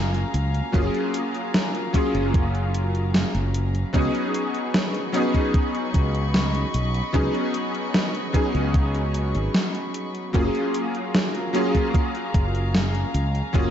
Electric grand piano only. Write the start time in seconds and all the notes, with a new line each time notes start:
Already playing: F#3 A#3 C#4 F4 G#4
0.72 F#3 A#3 C#4 F4 G#4
1.93 F#3 A#3 C#4 F4 G#4
3.93 F#3 B3 C#4 D#4 G#4
5.12 F#3 B3 C#4 D#4 G#4
7.13 F#3 B3 C#4 D#4 G#4
8.33 F#3 B3 C#4 D#4 G#4
10.33 F#3 A#3 C#4 F4 G#4
11.53 F#3 A#3 C#4 F4 G#4
13.53 F#3 A#3 C#4 F4 G#4